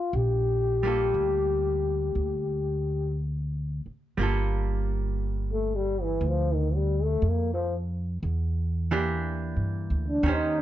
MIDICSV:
0, 0, Header, 1, 5, 480
1, 0, Start_track
1, 0, Key_signature, -2, "minor"
1, 0, Tempo, 1011804
1, 61, Time_signature, 4, 2, 24, 8
1, 5038, End_track
2, 0, Start_track
2, 0, Title_t, "Hollow-body jazz guitar"
2, 0, Program_c, 0, 26
2, 0, Note_on_c, 0, 55, 37
2, 0, Note_on_c, 0, 58, 35
2, 60, Note_off_c, 0, 55, 0
2, 71, Note_off_c, 0, 58, 0
2, 394, Note_on_c, 0, 55, 39
2, 403, Note_on_c, 0, 58, 40
2, 409, Note_on_c, 0, 65, 35
2, 415, Note_on_c, 0, 69, 39
2, 1975, Note_off_c, 0, 55, 0
2, 1980, Note_on_c, 0, 55, 42
2, 1983, Note_off_c, 0, 58, 0
2, 1989, Note_on_c, 0, 58, 49
2, 1992, Note_off_c, 0, 65, 0
2, 1998, Note_off_c, 0, 69, 0
2, 1998, Note_on_c, 0, 65, 47
2, 2007, Note_on_c, 0, 69, 45
2, 3902, Note_off_c, 0, 55, 0
2, 3906, Note_off_c, 0, 58, 0
2, 3911, Note_off_c, 0, 65, 0
2, 3916, Note_off_c, 0, 69, 0
2, 4228, Note_on_c, 0, 52, 43
2, 4231, Note_on_c, 0, 62, 46
2, 4232, Note_on_c, 0, 58, 42
2, 4234, Note_on_c, 0, 67, 51
2, 4853, Note_off_c, 0, 52, 0
2, 4855, Note_on_c, 0, 51, 49
2, 4860, Note_off_c, 0, 62, 0
2, 4861, Note_off_c, 0, 58, 0
2, 4862, Note_off_c, 0, 67, 0
2, 4867, Note_on_c, 0, 61, 49
2, 4875, Note_on_c, 0, 67, 45
2, 4878, Note_on_c, 0, 72, 50
2, 5038, Note_off_c, 0, 51, 0
2, 5038, Note_off_c, 0, 61, 0
2, 5038, Note_off_c, 0, 67, 0
2, 5038, Note_off_c, 0, 72, 0
2, 5038, End_track
3, 0, Start_track
3, 0, Title_t, "Trombone"
3, 0, Program_c, 1, 57
3, 0, Note_on_c, 1, 65, 72
3, 73, Note_on_c, 1, 67, 76
3, 80, Note_off_c, 1, 65, 0
3, 1508, Note_off_c, 1, 67, 0
3, 2620, Note_on_c, 1, 57, 62
3, 2729, Note_on_c, 1, 55, 71
3, 2736, Note_off_c, 1, 57, 0
3, 2860, Note_on_c, 1, 52, 66
3, 2867, Note_off_c, 1, 55, 0
3, 2977, Note_on_c, 1, 53, 76
3, 2984, Note_off_c, 1, 52, 0
3, 3102, Note_on_c, 1, 51, 68
3, 3109, Note_off_c, 1, 53, 0
3, 3204, Note_on_c, 1, 55, 65
3, 3211, Note_off_c, 1, 51, 0
3, 3336, Note_on_c, 1, 57, 71
3, 3343, Note_off_c, 1, 55, 0
3, 3458, Note_on_c, 1, 58, 65
3, 3465, Note_off_c, 1, 57, 0
3, 3572, Note_off_c, 1, 58, 0
3, 3575, Note_on_c, 1, 53, 69
3, 3677, Note_off_c, 1, 53, 0
3, 4783, Note_on_c, 1, 62, 76
3, 4899, Note_on_c, 1, 63, 92
3, 4906, Note_off_c, 1, 62, 0
3, 5023, Note_on_c, 1, 62, 84
3, 5030, Note_off_c, 1, 63, 0
3, 5038, Note_off_c, 1, 62, 0
3, 5038, End_track
4, 0, Start_track
4, 0, Title_t, "Upright bass"
4, 0, Program_c, 2, 32
4, 62, Note_on_c, 2, 34, 68
4, 521, Note_off_c, 2, 34, 0
4, 541, Note_on_c, 2, 38, 61
4, 1002, Note_off_c, 2, 38, 0
4, 1021, Note_on_c, 2, 38, 63
4, 1814, Note_off_c, 2, 38, 0
4, 1981, Note_on_c, 2, 31, 60
4, 2925, Note_off_c, 2, 31, 0
4, 2945, Note_on_c, 2, 38, 73
4, 3406, Note_off_c, 2, 38, 0
4, 3425, Note_on_c, 2, 41, 76
4, 3885, Note_off_c, 2, 41, 0
4, 3902, Note_on_c, 2, 40, 69
4, 4522, Note_off_c, 2, 40, 0
4, 4537, Note_on_c, 2, 43, 54
4, 4687, Note_off_c, 2, 43, 0
4, 4697, Note_on_c, 2, 38, 62
4, 4848, Note_off_c, 2, 38, 0
4, 4853, Note_on_c, 2, 39, 88
4, 5038, Note_off_c, 2, 39, 0
4, 5038, End_track
5, 0, Start_track
5, 0, Title_t, "Muted upright bass strokes"
5, 1830, Note_on_c, 9, 29, 27
5, 1878, Note_off_c, 9, 29, 0
5, 5038, End_track
0, 0, End_of_file